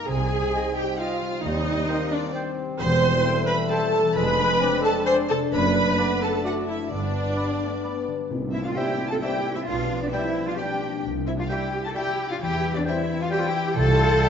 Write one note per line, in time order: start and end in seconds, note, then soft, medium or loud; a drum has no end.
0.00 1.21 G3 soft
0.00 0.30 D#4 medium
0.00 0.41 G4 soft
0.00 0.10 A#4 medium
0.00 0.63 D#5 medium
0.00 0.75 G5 medium
0.07 0.45 C2 medium
0.07 1.46 C3 medium
0.07 0.46 C3 medium
0.07 2.76 G3 medium
0.07 1.41 C4 medium
0.07 1.42 D#4 medium
0.07 0.74 G#4 medium
0.07 0.76 G#4 loud
0.07 0.75 G#5 medium
0.20 1.09 C4 soft
0.32 0.98 D#4 medium
0.42 1.65 G4 medium
0.53 0.86 C5 medium
0.53 0.70 D#5 medium
0.53 0.63 G5 medium
0.64 2.82 D#5 medium
0.76 0.98 G4 medium
0.76 0.86 G4 medium
0.76 0.98 G5 medium
0.76 1.99 G5 medium
0.76 0.99 G5 medium
0.87 1.77 C5 medium
0.98 2.82 D#4 medium
0.98 1.45 F4 medium
0.98 1.43 F4 medium
0.98 1.14 D#5 medium
0.98 1.43 F5 medium
0.98 1.08 G5 medium
1.10 1.32 C4 medium
1.22 4.18 G3 medium
1.33 1.54 C4 medium
1.43 1.82 D#2 medium
1.43 2.82 D#3 medium
1.43 1.88 G3 medium
1.43 4.13 C4 medium
1.43 2.12 D#4 loud
1.43 2.12 D#4 medium
1.43 2.12 D#5 medium
1.43 2.11 D#5 medium
1.55 2.44 C4 medium
1.78 2.21 C5 medium
1.88 2.35 A#3 medium
1.88 2.32 G4 medium
1.88 2.04 C5 medium
1.88 1.97 G5 medium
2.00 3.46 G5 medium
2.11 2.19 D4 medium
2.11 2.22 D4 medium
2.11 2.34 D5 medium
2.11 2.35 D5 medium
2.11 6.01 C6 medium
2.22 3.24 C5 medium
2.34 3.24 C4 medium
2.34 2.55 G4 medium
2.34 2.51 C5 medium
2.34 2.43 G5 medium
2.45 2.67 C4 medium
2.56 3.12 G4 medium
2.68 2.90 C4 medium
2.78 3.18 E1 medium
2.78 4.18 E2 medium
2.78 3.18 E2 medium
2.78 4.13 G3 medium
2.78 3.43 C5 loud
2.78 3.50 C5 loud
2.78 3.43 C6 loud
2.91 3.69 C4 medium
3.02 3.80 E3 medium
3.13 3.35 G4 medium
3.24 4.18 A3 loud
3.24 3.41 C5 medium
3.24 3.58 C5 medium
3.24 3.33 G5 medium
3.36 4.18 G4 medium
3.47 3.55 B4 loud
3.47 3.68 B4 loud
3.47 4.18 G5 medium
3.47 3.55 B5 medium
3.47 3.70 B5 loud
3.69 3.92 C4 medium
3.69 4.18 A4 loud
3.69 4.15 A4 loud
3.69 3.86 C5 medium
3.69 3.78 G5 medium
3.69 4.15 A5 medium
3.69 4.15 A5 loud
3.81 4.03 E3 medium
3.93 4.25 C4 medium
4.04 4.18 E3 medium
4.15 4.54 F1 medium
4.15 5.54 F2 medium
4.15 4.54 F2 medium
4.15 5.38 G#3 medium
4.15 4.61 G#3 medium
4.15 6.91 D4 medium
4.15 4.83 B4 loud
4.15 4.83 B5 loud
4.15 4.84 B5 loud
4.27 5.17 C4 medium
4.37 5.05 D4 medium
4.49 5.54 G#4 medium
4.60 5.24 C4 medium
4.60 4.78 D5 medium
4.60 4.68 G#5 medium
4.72 6.09 D5 medium
4.83 5.06 A4 loud
4.83 4.94 A4 loud
4.83 5.54 G#5 medium
4.83 5.06 A5 loud
4.83 4.92 A5 loud
4.95 5.97 C5 medium
5.06 5.74 D4 medium
5.06 5.17 C5 loud
5.06 5.14 C5 loud
5.06 5.22 D5 medium
5.06 5.14 G#5 medium
5.06 5.14 C6 loud
5.06 5.15 C6 loud
5.18 5.39 C4 medium
5.29 5.54 C3 medium
5.29 5.39 A4 medium
5.29 5.38 A4 loud
5.29 5.37 A5 loud
5.29 5.39 A5 medium
5.41 5.62 C4 medium
5.51 5.91 F#1 loud
5.51 6.92 F#2 medium
5.51 5.91 F#2 loud
5.51 6.89 A3 medium
5.51 5.96 D4 medium
5.51 6.22 B4 loud
5.51 6.20 B4 loud
5.51 6.20 B5 loud
5.63 6.55 C4 medium
5.75 6.43 D4 medium
5.87 6.93 A4 medium
5.98 6.46 B3 medium
5.98 6.14 D5 medium
5.98 6.06 A5 medium
6.10 7.48 D5 medium
6.21 6.44 A4 medium
6.21 6.44 A4 loud
6.21 6.93 A5 medium
6.21 6.45 A5 medium
6.21 6.30 A5 medium
6.33 6.93 C5 medium
6.44 6.91 A3 medium
6.44 7.12 D4 medium
6.44 6.55 F#4 medium
6.44 6.67 F#4 medium
6.44 6.60 D5 medium
6.44 6.53 F#5 medium
6.44 6.52 A5 medium
6.56 6.78 C4 soft
6.66 6.93 F#3 soft
6.66 6.90 E4 medium
6.66 6.76 E4 medium
6.66 6.91 E5 medium
6.79 6.93 C4 soft
6.91 7.30 G1 medium
6.91 7.30 G2 medium
6.91 8.32 G2 medium
6.91 8.05 B3 medium
6.91 7.34 B3 medium
6.91 8.05 D4 medium
6.91 7.33 D4 medium
6.91 8.05 D5 medium
7.02 7.93 B3 soft
7.14 7.82 D4 medium
7.26 9.20 G4 medium
7.36 7.60 G3 medium
7.36 7.71 B4 medium
7.36 7.52 D5 medium
7.36 7.45 B5 medium
7.49 8.32 D5 medium
7.61 7.72 A3 medium
7.61 11.51 G5 soft
7.72 8.32 B4 medium
7.84 8.07 B3 medium
7.84 8.32 D4 soft
7.84 8.00 D5 soft
7.84 7.93 B5 soft
7.95 8.18 B3 soft
8.07 8.32 D3 soft
8.07 8.19 D4 medium
8.19 8.32 B3 soft
8.30 8.69 C2 medium
8.30 9.69 C3 medium
8.30 tam-tam medium
8.53 9.69 C4 medium
8.53 8.58 C4 medium
8.53 8.64 E4 medium
8.53 8.64 E5 medium
8.53 8.58 E5 medium
8.64 8.69 D4 medium
8.64 8.77 F4 medium
8.64 8.69 F5 medium
8.64 8.77 F5 medium
8.74 10.11 G3 medium
8.74 8.92 G3 medium
8.74 9.09 E4 medium
8.74 9.11 G4 medium
8.74 8.85 C5 medium
8.74 8.94 C5 medium
8.74 8.93 E5 medium
8.74 8.85 E5 medium
8.74 9.09 G5 medium
8.74 9.12 G5 medium
8.78 8.94 G3 medium
8.78 8.95 E4 medium
8.99 9.43 E4 medium
9.08 9.22 F4 medium
9.08 9.13 A5 medium
9.08 9.20 A5 medium
9.12 9.17 A4 medium
9.21 9.38 G3 medium
9.21 9.40 G3 medium
9.21 9.55 E4 medium
9.21 9.40 E4 medium
9.21 10.57 G4 medium
9.21 9.56 G4 medium
9.21 9.31 C5 medium
9.21 9.40 C5 medium
9.21 9.37 E5 medium
9.21 9.31 E5 medium
9.21 9.55 G5 medium
9.44 9.69 E4 medium
9.55 9.67 C4 medium
9.55 9.68 E4 medium
9.55 9.60 E5 medium
9.55 9.69 E5 medium
9.67 10.05 B1 medium
9.67 11.06 B2 medium
9.67 10.01 D4 medium
9.67 10.01 F4 medium
9.67 10.02 F5 medium
9.67 10.01 F5 medium
9.89 11.06 F3 soft
10.01 10.13 B3 medium
10.01 10.07 D4 medium
10.01 10.08 D5 medium
10.01 10.14 D5 medium
10.12 11.25 G3 medium
10.12 10.30 G3 medium
10.12 10.47 C4 medium
10.12 10.30 D4 medium
10.12 10.47 E4 medium
10.12 10.21 D5 medium
10.12 10.30 D5 medium
10.12 10.47 E5 medium
10.12 10.48 E5 medium
10.12 10.21 G5 medium
10.12 10.29 G5 medium
10.36 10.80 D4 medium
10.47 10.52 D4 medium
10.47 10.59 F4 medium
10.47 10.58 F5 medium
10.47 10.54 F5 medium
10.57 10.76 G3 medium
10.57 11.04 D4 medium
10.57 10.75 D4 medium
10.57 11.04 G4 medium
10.57 10.65 D5 medium
10.57 10.73 D5 medium
10.57 10.66 G5 medium
10.57 11.04 G5 medium
10.57 10.76 G5 medium
10.57 11.05 G5 medium
10.81 11.06 D4 medium
11.04 11.42 C2 medium
11.04 12.43 C3 medium
11.26 12.63 G3 soft
11.26 11.31 C4 medium
11.26 11.32 E4 medium
11.26 11.31 E5 medium
11.26 11.38 E5 medium
11.38 11.43 D4 medium
11.38 11.44 F4 medium
11.38 11.44 F5 medium
11.38 11.51 F5 medium
11.48 11.66 G3 medium
11.48 12.86 C4 medium
11.48 11.67 E4 medium
11.48 11.84 E4 medium
11.48 11.84 G4 medium
11.48 11.58 E5 medium
11.48 11.67 E5 medium
11.48 11.64 G5 medium
11.48 11.84 G5 medium
11.48 11.57 G5 medium
11.48 11.84 G5 medium
11.72 12.18 E4 medium
11.84 11.89 F4 medium
11.84 11.97 A4 medium
11.84 11.89 A5 medium
11.84 11.90 A5 medium
11.94 12.10 G3 medium
11.94 12.12 G3 medium
11.94 12.29 E4 medium
11.94 12.11 E4 medium
11.94 13.31 G4 medium
11.94 12.30 G4 medium
11.94 12.03 E5 medium
11.94 12.13 E5 medium
11.94 12.29 G5 medium
11.94 12.11 G5 medium
11.94 12.03 G5 medium
11.94 12.29 G5 medium
12.19 13.08 E4 medium
12.30 12.41 D4 medium
12.30 12.35 F4 medium
12.30 12.41 F5 medium
12.30 12.36 F5 medium
12.41 12.79 E2 medium
12.41 13.79 E3 medium
12.41 12.75 E4 loud
12.41 12.75 G4 loud
12.41 12.74 G5 medium
12.41 12.76 G5 medium
12.64 13.99 G3 medium
12.74 12.86 B3 medium
12.74 12.87 D4 medium
12.74 12.79 D5 medium
12.74 12.86 D5 medium
12.85 13.01 G3 medium
12.85 13.04 G3 medium
12.85 13.21 C4 medium
12.85 14.21 C4 medium
12.85 13.04 C4 medium
12.85 13.21 E4 medium
12.85 12.95 C5 medium
12.85 13.04 C5 medium
12.85 13.20 E5 medium
12.85 13.23 E5 medium
12.85 13.01 G5 medium
12.85 12.95 G5 medium
13.09 13.53 E4 medium
13.20 13.24 D4 medium
13.20 13.33 F4 medium
13.20 13.31 F5 medium
13.20 13.32 F5 medium
13.30 13.46 G3 medium
13.30 13.47 G3 medium
13.30 13.47 C4 medium
13.30 13.76 E4 loud
13.30 13.39 G4 loud
13.30 14.29 G4 medium
13.30 13.48 C5 medium
13.30 13.41 C5 medium
13.30 13.47 G5 medium
13.30 13.76 G5 medium
13.30 13.77 G5 medium
13.30 13.41 G5 medium
13.38 13.45 F4 medium
13.46 13.77 G4 loud
13.76 14.15 C2 loud
13.76 14.29 C3 medium
13.76 14.29 G3 medium
13.76 14.29 E4 medium
13.76 14.29 F4 loud
13.76 14.29 A4 loud
13.76 14.29 E5 medium
13.76 14.29 G5 medium
13.76 14.29 A5 loud
14.00 14.29 G3 medium
14.22 14.29 C4 medium
14.22 14.29 E5 medium
14.22 14.29 G5 medium